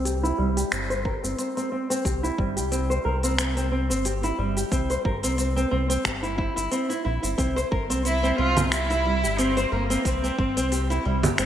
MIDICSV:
0, 0, Header, 1, 5, 480
1, 0, Start_track
1, 0, Key_signature, 0, "major"
1, 0, Tempo, 666667
1, 1478, Time_signature, 4, 2, 24, 8
1, 8250, End_track
2, 0, Start_track
2, 0, Title_t, "Cello"
2, 0, Program_c, 0, 42
2, 5799, Note_on_c, 0, 64, 101
2, 6022, Note_off_c, 0, 64, 0
2, 6038, Note_on_c, 0, 65, 105
2, 6261, Note_off_c, 0, 65, 0
2, 6276, Note_on_c, 0, 64, 105
2, 6758, Note_on_c, 0, 60, 94
2, 6769, Note_off_c, 0, 64, 0
2, 6992, Note_on_c, 0, 58, 88
2, 7003, Note_off_c, 0, 60, 0
2, 7233, Note_on_c, 0, 60, 97
2, 7243, Note_off_c, 0, 58, 0
2, 7955, Note_off_c, 0, 60, 0
2, 8250, End_track
3, 0, Start_track
3, 0, Title_t, "Nylon-string guitar"
3, 0, Program_c, 1, 24
3, 35, Note_on_c, 1, 67, 73
3, 156, Note_off_c, 1, 67, 0
3, 167, Note_on_c, 1, 64, 90
3, 266, Note_off_c, 1, 64, 0
3, 274, Note_on_c, 1, 55, 74
3, 395, Note_off_c, 1, 55, 0
3, 408, Note_on_c, 1, 67, 72
3, 506, Note_off_c, 1, 67, 0
3, 517, Note_on_c, 1, 60, 87
3, 643, Note_off_c, 1, 60, 0
3, 647, Note_on_c, 1, 72, 99
3, 710, Note_off_c, 1, 72, 0
3, 754, Note_on_c, 1, 70, 66
3, 831, Note_off_c, 1, 70, 0
3, 890, Note_on_c, 1, 60, 96
3, 987, Note_off_c, 1, 60, 0
3, 996, Note_on_c, 1, 60, 78
3, 1120, Note_off_c, 1, 60, 0
3, 1129, Note_on_c, 1, 60, 93
3, 1227, Note_off_c, 1, 60, 0
3, 1236, Note_on_c, 1, 60, 87
3, 1359, Note_off_c, 1, 60, 0
3, 1367, Note_on_c, 1, 60, 91
3, 1466, Note_off_c, 1, 60, 0
3, 1476, Note_on_c, 1, 67, 82
3, 1596, Note_off_c, 1, 67, 0
3, 1607, Note_on_c, 1, 64, 94
3, 1706, Note_off_c, 1, 64, 0
3, 1716, Note_on_c, 1, 55, 68
3, 1836, Note_off_c, 1, 55, 0
3, 1846, Note_on_c, 1, 67, 75
3, 1945, Note_off_c, 1, 67, 0
3, 1954, Note_on_c, 1, 60, 89
3, 2082, Note_off_c, 1, 60, 0
3, 2087, Note_on_c, 1, 72, 88
3, 2150, Note_off_c, 1, 72, 0
3, 2194, Note_on_c, 1, 70, 72
3, 2271, Note_off_c, 1, 70, 0
3, 2329, Note_on_c, 1, 60, 98
3, 2427, Note_off_c, 1, 60, 0
3, 2437, Note_on_c, 1, 60, 74
3, 2559, Note_off_c, 1, 60, 0
3, 2568, Note_on_c, 1, 60, 98
3, 2666, Note_off_c, 1, 60, 0
3, 2675, Note_on_c, 1, 60, 93
3, 2798, Note_off_c, 1, 60, 0
3, 2807, Note_on_c, 1, 60, 87
3, 2905, Note_off_c, 1, 60, 0
3, 2918, Note_on_c, 1, 67, 80
3, 3037, Note_off_c, 1, 67, 0
3, 3049, Note_on_c, 1, 64, 93
3, 3147, Note_off_c, 1, 64, 0
3, 3156, Note_on_c, 1, 55, 68
3, 3276, Note_off_c, 1, 55, 0
3, 3289, Note_on_c, 1, 67, 70
3, 3386, Note_off_c, 1, 67, 0
3, 3395, Note_on_c, 1, 60, 92
3, 3522, Note_off_c, 1, 60, 0
3, 3529, Note_on_c, 1, 72, 89
3, 3591, Note_off_c, 1, 72, 0
3, 3637, Note_on_c, 1, 70, 67
3, 3713, Note_off_c, 1, 70, 0
3, 3768, Note_on_c, 1, 60, 102
3, 3866, Note_off_c, 1, 60, 0
3, 3874, Note_on_c, 1, 60, 77
3, 3997, Note_off_c, 1, 60, 0
3, 4006, Note_on_c, 1, 60, 94
3, 4104, Note_off_c, 1, 60, 0
3, 4112, Note_on_c, 1, 60, 94
3, 4236, Note_off_c, 1, 60, 0
3, 4244, Note_on_c, 1, 60, 96
3, 4344, Note_off_c, 1, 60, 0
3, 4351, Note_on_c, 1, 67, 75
3, 4473, Note_off_c, 1, 67, 0
3, 4482, Note_on_c, 1, 64, 92
3, 4583, Note_off_c, 1, 64, 0
3, 4592, Note_on_c, 1, 64, 89
3, 4715, Note_off_c, 1, 64, 0
3, 4724, Note_on_c, 1, 64, 90
3, 4824, Note_off_c, 1, 64, 0
3, 4833, Note_on_c, 1, 60, 83
3, 4961, Note_off_c, 1, 60, 0
3, 4964, Note_on_c, 1, 64, 69
3, 5064, Note_off_c, 1, 64, 0
3, 5073, Note_on_c, 1, 64, 69
3, 5195, Note_off_c, 1, 64, 0
3, 5203, Note_on_c, 1, 64, 69
3, 5304, Note_off_c, 1, 64, 0
3, 5312, Note_on_c, 1, 60, 101
3, 5440, Note_off_c, 1, 60, 0
3, 5446, Note_on_c, 1, 72, 95
3, 5509, Note_off_c, 1, 72, 0
3, 5554, Note_on_c, 1, 70, 69
3, 5631, Note_off_c, 1, 70, 0
3, 5686, Note_on_c, 1, 60, 104
3, 5785, Note_off_c, 1, 60, 0
3, 5795, Note_on_c, 1, 60, 78
3, 5918, Note_off_c, 1, 60, 0
3, 5927, Note_on_c, 1, 60, 98
3, 6027, Note_off_c, 1, 60, 0
3, 6036, Note_on_c, 1, 60, 102
3, 6157, Note_off_c, 1, 60, 0
3, 6166, Note_on_c, 1, 60, 103
3, 6265, Note_off_c, 1, 60, 0
3, 6276, Note_on_c, 1, 67, 75
3, 6396, Note_off_c, 1, 67, 0
3, 6408, Note_on_c, 1, 64, 98
3, 6506, Note_off_c, 1, 64, 0
3, 6518, Note_on_c, 1, 55, 67
3, 6637, Note_off_c, 1, 55, 0
3, 6649, Note_on_c, 1, 67, 70
3, 6746, Note_off_c, 1, 67, 0
3, 6758, Note_on_c, 1, 60, 95
3, 6884, Note_off_c, 1, 60, 0
3, 6889, Note_on_c, 1, 72, 95
3, 6951, Note_off_c, 1, 72, 0
3, 6997, Note_on_c, 1, 70, 71
3, 7073, Note_off_c, 1, 70, 0
3, 7128, Note_on_c, 1, 60, 92
3, 7226, Note_off_c, 1, 60, 0
3, 7240, Note_on_c, 1, 60, 81
3, 7362, Note_off_c, 1, 60, 0
3, 7371, Note_on_c, 1, 60, 93
3, 7468, Note_off_c, 1, 60, 0
3, 7476, Note_on_c, 1, 60, 91
3, 7601, Note_off_c, 1, 60, 0
3, 7609, Note_on_c, 1, 60, 98
3, 7707, Note_off_c, 1, 60, 0
3, 7718, Note_on_c, 1, 67, 79
3, 7837, Note_off_c, 1, 67, 0
3, 7849, Note_on_c, 1, 64, 95
3, 7947, Note_off_c, 1, 64, 0
3, 7958, Note_on_c, 1, 55, 72
3, 8077, Note_off_c, 1, 55, 0
3, 8091, Note_on_c, 1, 67, 73
3, 8187, Note_off_c, 1, 67, 0
3, 8199, Note_on_c, 1, 60, 95
3, 8250, Note_off_c, 1, 60, 0
3, 8250, End_track
4, 0, Start_track
4, 0, Title_t, "Analog synth bass"
4, 0, Program_c, 2, 38
4, 0, Note_on_c, 2, 36, 89
4, 233, Note_off_c, 2, 36, 0
4, 277, Note_on_c, 2, 36, 85
4, 461, Note_off_c, 2, 36, 0
4, 520, Note_on_c, 2, 31, 78
4, 835, Note_off_c, 2, 31, 0
4, 890, Note_on_c, 2, 31, 82
4, 969, Note_off_c, 2, 31, 0
4, 1477, Note_on_c, 2, 36, 90
4, 1661, Note_off_c, 2, 36, 0
4, 1717, Note_on_c, 2, 31, 93
4, 1849, Note_on_c, 2, 36, 90
4, 1860, Note_off_c, 2, 31, 0
4, 2152, Note_off_c, 2, 36, 0
4, 2197, Note_on_c, 2, 36, 88
4, 2807, Note_on_c, 2, 31, 90
4, 2818, Note_off_c, 2, 36, 0
4, 3111, Note_off_c, 2, 31, 0
4, 3156, Note_on_c, 2, 31, 93
4, 3340, Note_off_c, 2, 31, 0
4, 3396, Note_on_c, 2, 36, 90
4, 3580, Note_off_c, 2, 36, 0
4, 3637, Note_on_c, 2, 31, 86
4, 3768, Note_on_c, 2, 36, 97
4, 3779, Note_off_c, 2, 31, 0
4, 4072, Note_off_c, 2, 36, 0
4, 4117, Note_on_c, 2, 36, 83
4, 4301, Note_off_c, 2, 36, 0
4, 4355, Note_on_c, 2, 31, 74
4, 4673, Note_off_c, 2, 31, 0
4, 4729, Note_on_c, 2, 31, 88
4, 4809, Note_off_c, 2, 31, 0
4, 5078, Note_on_c, 2, 34, 90
4, 5176, Note_off_c, 2, 34, 0
4, 5210, Note_on_c, 2, 31, 92
4, 5289, Note_off_c, 2, 31, 0
4, 5316, Note_on_c, 2, 36, 86
4, 5500, Note_off_c, 2, 36, 0
4, 5556, Note_on_c, 2, 31, 91
4, 5689, Note_on_c, 2, 36, 98
4, 5700, Note_off_c, 2, 31, 0
4, 5992, Note_off_c, 2, 36, 0
4, 6036, Note_on_c, 2, 36, 94
4, 6649, Note_on_c, 2, 31, 89
4, 6659, Note_off_c, 2, 36, 0
4, 6952, Note_off_c, 2, 31, 0
4, 6997, Note_on_c, 2, 31, 97
4, 7180, Note_off_c, 2, 31, 0
4, 7237, Note_on_c, 2, 36, 87
4, 7421, Note_off_c, 2, 36, 0
4, 7477, Note_on_c, 2, 31, 87
4, 7609, Note_on_c, 2, 36, 95
4, 7620, Note_off_c, 2, 31, 0
4, 7912, Note_off_c, 2, 36, 0
4, 7959, Note_on_c, 2, 36, 88
4, 8142, Note_off_c, 2, 36, 0
4, 8198, Note_on_c, 2, 31, 82
4, 8250, Note_off_c, 2, 31, 0
4, 8250, End_track
5, 0, Start_track
5, 0, Title_t, "Drums"
5, 39, Note_on_c, 9, 46, 63
5, 46, Note_on_c, 9, 82, 54
5, 111, Note_off_c, 9, 46, 0
5, 118, Note_off_c, 9, 82, 0
5, 180, Note_on_c, 9, 82, 33
5, 252, Note_off_c, 9, 82, 0
5, 411, Note_on_c, 9, 46, 43
5, 418, Note_on_c, 9, 82, 60
5, 483, Note_off_c, 9, 46, 0
5, 490, Note_off_c, 9, 82, 0
5, 517, Note_on_c, 9, 26, 78
5, 517, Note_on_c, 9, 46, 64
5, 525, Note_on_c, 9, 82, 56
5, 589, Note_off_c, 9, 26, 0
5, 589, Note_off_c, 9, 46, 0
5, 597, Note_off_c, 9, 82, 0
5, 651, Note_on_c, 9, 46, 28
5, 658, Note_on_c, 9, 82, 32
5, 723, Note_off_c, 9, 46, 0
5, 730, Note_off_c, 9, 82, 0
5, 757, Note_on_c, 9, 36, 95
5, 829, Note_off_c, 9, 36, 0
5, 898, Note_on_c, 9, 82, 69
5, 970, Note_off_c, 9, 82, 0
5, 997, Note_on_c, 9, 46, 60
5, 1005, Note_on_c, 9, 82, 54
5, 1069, Note_off_c, 9, 46, 0
5, 1077, Note_off_c, 9, 82, 0
5, 1132, Note_on_c, 9, 46, 28
5, 1139, Note_on_c, 9, 82, 32
5, 1204, Note_off_c, 9, 46, 0
5, 1211, Note_off_c, 9, 82, 0
5, 1371, Note_on_c, 9, 46, 28
5, 1378, Note_on_c, 9, 82, 66
5, 1443, Note_off_c, 9, 46, 0
5, 1450, Note_off_c, 9, 82, 0
5, 1476, Note_on_c, 9, 36, 111
5, 1478, Note_on_c, 9, 46, 67
5, 1486, Note_on_c, 9, 82, 56
5, 1548, Note_off_c, 9, 36, 0
5, 1550, Note_off_c, 9, 46, 0
5, 1558, Note_off_c, 9, 82, 0
5, 1617, Note_on_c, 9, 82, 32
5, 1689, Note_off_c, 9, 82, 0
5, 1717, Note_on_c, 9, 36, 101
5, 1789, Note_off_c, 9, 36, 0
5, 1849, Note_on_c, 9, 46, 39
5, 1856, Note_on_c, 9, 82, 63
5, 1921, Note_off_c, 9, 46, 0
5, 1928, Note_off_c, 9, 82, 0
5, 1958, Note_on_c, 9, 46, 58
5, 1965, Note_on_c, 9, 82, 56
5, 2030, Note_off_c, 9, 46, 0
5, 2037, Note_off_c, 9, 82, 0
5, 2096, Note_on_c, 9, 82, 33
5, 2168, Note_off_c, 9, 82, 0
5, 2328, Note_on_c, 9, 46, 41
5, 2335, Note_on_c, 9, 82, 67
5, 2400, Note_off_c, 9, 46, 0
5, 2407, Note_off_c, 9, 82, 0
5, 2437, Note_on_c, 9, 26, 75
5, 2437, Note_on_c, 9, 46, 63
5, 2444, Note_on_c, 9, 82, 59
5, 2509, Note_off_c, 9, 26, 0
5, 2509, Note_off_c, 9, 46, 0
5, 2516, Note_off_c, 9, 82, 0
5, 2570, Note_on_c, 9, 46, 28
5, 2577, Note_on_c, 9, 82, 30
5, 2642, Note_off_c, 9, 46, 0
5, 2649, Note_off_c, 9, 82, 0
5, 2816, Note_on_c, 9, 82, 62
5, 2888, Note_off_c, 9, 82, 0
5, 2917, Note_on_c, 9, 46, 62
5, 2924, Note_on_c, 9, 82, 55
5, 2989, Note_off_c, 9, 46, 0
5, 2996, Note_off_c, 9, 82, 0
5, 3048, Note_on_c, 9, 46, 29
5, 3055, Note_on_c, 9, 82, 31
5, 3120, Note_off_c, 9, 46, 0
5, 3127, Note_off_c, 9, 82, 0
5, 3288, Note_on_c, 9, 46, 28
5, 3296, Note_on_c, 9, 82, 60
5, 3360, Note_off_c, 9, 46, 0
5, 3368, Note_off_c, 9, 82, 0
5, 3396, Note_on_c, 9, 36, 116
5, 3396, Note_on_c, 9, 46, 59
5, 3404, Note_on_c, 9, 82, 54
5, 3468, Note_off_c, 9, 36, 0
5, 3468, Note_off_c, 9, 46, 0
5, 3476, Note_off_c, 9, 82, 0
5, 3527, Note_on_c, 9, 46, 26
5, 3534, Note_on_c, 9, 82, 31
5, 3599, Note_off_c, 9, 46, 0
5, 3606, Note_off_c, 9, 82, 0
5, 3636, Note_on_c, 9, 36, 102
5, 3708, Note_off_c, 9, 36, 0
5, 3768, Note_on_c, 9, 46, 39
5, 3775, Note_on_c, 9, 82, 69
5, 3840, Note_off_c, 9, 46, 0
5, 3847, Note_off_c, 9, 82, 0
5, 3875, Note_on_c, 9, 46, 58
5, 3882, Note_on_c, 9, 82, 54
5, 3947, Note_off_c, 9, 46, 0
5, 3954, Note_off_c, 9, 82, 0
5, 4015, Note_on_c, 9, 82, 32
5, 4087, Note_off_c, 9, 82, 0
5, 4247, Note_on_c, 9, 46, 43
5, 4255, Note_on_c, 9, 82, 67
5, 4319, Note_off_c, 9, 46, 0
5, 4327, Note_off_c, 9, 82, 0
5, 4356, Note_on_c, 9, 26, 71
5, 4356, Note_on_c, 9, 36, 61
5, 4356, Note_on_c, 9, 46, 60
5, 4363, Note_on_c, 9, 82, 56
5, 4428, Note_off_c, 9, 26, 0
5, 4428, Note_off_c, 9, 36, 0
5, 4428, Note_off_c, 9, 46, 0
5, 4435, Note_off_c, 9, 82, 0
5, 4489, Note_on_c, 9, 46, 28
5, 4496, Note_on_c, 9, 82, 32
5, 4561, Note_off_c, 9, 46, 0
5, 4568, Note_off_c, 9, 82, 0
5, 4596, Note_on_c, 9, 36, 96
5, 4668, Note_off_c, 9, 36, 0
5, 4730, Note_on_c, 9, 46, 28
5, 4737, Note_on_c, 9, 82, 69
5, 4802, Note_off_c, 9, 46, 0
5, 4809, Note_off_c, 9, 82, 0
5, 4835, Note_on_c, 9, 46, 56
5, 4842, Note_on_c, 9, 82, 54
5, 4907, Note_off_c, 9, 46, 0
5, 4914, Note_off_c, 9, 82, 0
5, 4968, Note_on_c, 9, 46, 28
5, 4975, Note_on_c, 9, 82, 33
5, 5040, Note_off_c, 9, 46, 0
5, 5047, Note_off_c, 9, 82, 0
5, 5208, Note_on_c, 9, 46, 28
5, 5215, Note_on_c, 9, 82, 61
5, 5280, Note_off_c, 9, 46, 0
5, 5287, Note_off_c, 9, 82, 0
5, 5317, Note_on_c, 9, 36, 107
5, 5317, Note_on_c, 9, 46, 60
5, 5324, Note_on_c, 9, 82, 56
5, 5389, Note_off_c, 9, 36, 0
5, 5389, Note_off_c, 9, 46, 0
5, 5396, Note_off_c, 9, 82, 0
5, 5456, Note_on_c, 9, 82, 32
5, 5528, Note_off_c, 9, 82, 0
5, 5557, Note_on_c, 9, 36, 102
5, 5629, Note_off_c, 9, 36, 0
5, 5690, Note_on_c, 9, 46, 41
5, 5697, Note_on_c, 9, 82, 66
5, 5762, Note_off_c, 9, 46, 0
5, 5769, Note_off_c, 9, 82, 0
5, 5797, Note_on_c, 9, 46, 57
5, 5804, Note_on_c, 9, 82, 51
5, 5869, Note_off_c, 9, 46, 0
5, 5876, Note_off_c, 9, 82, 0
5, 5936, Note_on_c, 9, 82, 32
5, 6008, Note_off_c, 9, 82, 0
5, 6168, Note_on_c, 9, 46, 41
5, 6168, Note_on_c, 9, 64, 75
5, 6175, Note_on_c, 9, 82, 64
5, 6240, Note_off_c, 9, 46, 0
5, 6240, Note_off_c, 9, 64, 0
5, 6247, Note_off_c, 9, 82, 0
5, 6277, Note_on_c, 9, 26, 72
5, 6277, Note_on_c, 9, 46, 61
5, 6284, Note_on_c, 9, 82, 55
5, 6349, Note_off_c, 9, 26, 0
5, 6349, Note_off_c, 9, 46, 0
5, 6356, Note_off_c, 9, 82, 0
5, 6411, Note_on_c, 9, 46, 27
5, 6418, Note_on_c, 9, 82, 31
5, 6483, Note_off_c, 9, 46, 0
5, 6490, Note_off_c, 9, 82, 0
5, 6658, Note_on_c, 9, 82, 63
5, 6730, Note_off_c, 9, 82, 0
5, 6757, Note_on_c, 9, 46, 60
5, 6764, Note_on_c, 9, 82, 52
5, 6829, Note_off_c, 9, 46, 0
5, 6836, Note_off_c, 9, 82, 0
5, 6890, Note_on_c, 9, 46, 28
5, 6897, Note_on_c, 9, 82, 31
5, 6962, Note_off_c, 9, 46, 0
5, 6969, Note_off_c, 9, 82, 0
5, 7130, Note_on_c, 9, 46, 26
5, 7137, Note_on_c, 9, 82, 65
5, 7202, Note_off_c, 9, 46, 0
5, 7209, Note_off_c, 9, 82, 0
5, 7237, Note_on_c, 9, 36, 104
5, 7238, Note_on_c, 9, 46, 63
5, 7245, Note_on_c, 9, 82, 51
5, 7309, Note_off_c, 9, 36, 0
5, 7310, Note_off_c, 9, 46, 0
5, 7317, Note_off_c, 9, 82, 0
5, 7377, Note_on_c, 9, 82, 31
5, 7449, Note_off_c, 9, 82, 0
5, 7477, Note_on_c, 9, 36, 95
5, 7549, Note_off_c, 9, 36, 0
5, 7611, Note_on_c, 9, 46, 43
5, 7618, Note_on_c, 9, 82, 62
5, 7683, Note_off_c, 9, 46, 0
5, 7690, Note_off_c, 9, 82, 0
5, 7718, Note_on_c, 9, 46, 64
5, 7725, Note_on_c, 9, 82, 48
5, 7790, Note_off_c, 9, 46, 0
5, 7797, Note_off_c, 9, 82, 0
5, 7857, Note_on_c, 9, 82, 30
5, 7929, Note_off_c, 9, 82, 0
5, 8088, Note_on_c, 9, 46, 43
5, 8088, Note_on_c, 9, 64, 79
5, 8096, Note_on_c, 9, 82, 58
5, 8160, Note_off_c, 9, 46, 0
5, 8160, Note_off_c, 9, 64, 0
5, 8168, Note_off_c, 9, 82, 0
5, 8195, Note_on_c, 9, 26, 70
5, 8195, Note_on_c, 9, 46, 65
5, 8202, Note_on_c, 9, 82, 51
5, 8250, Note_off_c, 9, 26, 0
5, 8250, Note_off_c, 9, 46, 0
5, 8250, Note_off_c, 9, 82, 0
5, 8250, End_track
0, 0, End_of_file